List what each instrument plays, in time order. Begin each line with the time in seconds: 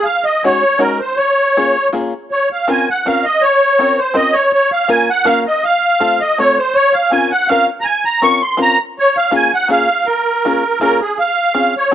0.04 accordion F5
0.24 accordion D#5
0.44 five-string banjo G#3 C#4 D#4 F#4, accordion C#5
0.78 five-string banjo G#3 C#4 D#4 F#4, accordion A#4
1.00 accordion C5
1.17 accordion C#5
1.57 five-string banjo A#3 C#4 F4 G#4
1.93 five-string banjo A#3 C#4 F4 G#4
2.31 accordion C#5
2.53 accordion F5
2.68 five-string banjo C4 C#4 F4 A#4, accordion G#5
2.90 accordion F#5
3.06 five-string banjo C4 C#4 F4 A#4, accordion F5
3.24 accordion D#5
3.42 accordion C#5
3.79 five-string banjo C4 C#4 F4 A#4
3.98 accordion C5
4.14 five-string banjo C4 C#4 F4 A#4, accordion D#5
4.33 accordion C#5
4.53 accordion C#5
4.72 accordion F5
4.88 five-string banjo A#3 C#4 F4 A#4, accordion G#5
5.10 accordion F#5
5.25 five-string banjo A#3 C#4 F4 A#4, accordion F5
5.47 accordion D#5
5.64 accordion F5
6.00 five-string banjo A3 C4 F4 A4
6.20 accordion D#5
6.38 five-string banjo A3 C4 F4 A4, accordion C#5
6.58 accordion C5
6.74 accordion C#5
6.93 accordion F5
7.11 five-string banjo C4 C#4 F4 A#4, accordion G#5
7.31 accordion F#5
7.48 five-string banjo C4 C#4 F4 A#4, accordion F5
7.81 accordion G#5 A#5
8.05 accordion A#5
8.22 five-string banjo C4 C#4 F4 A#4, accordion C#6
8.42 accordion C6
8.57 five-string banjo C4 C#4 F4 A#4
8.62 accordion A#5
8.99 accordion C#5
9.17 accordion F5
9.31 five-string banjo A#3 C#4 F4 G#4
9.35 accordion G#5
9.54 accordion F#5
9.68 five-string banjo A#3 C#4 F4 G#4, accordion F5
10.05 accordion A#4
10.45 five-string banjo A#3 C#4 F4 G#4
10.81 five-string banjo A#3 C#4 F4 G#4, accordion A#4
11.01 accordion G#4
11.19 accordion F5
11.54 five-string banjo C4 C#4 F4 G#4
11.77 accordion C#5
11.91 five-string banjo C4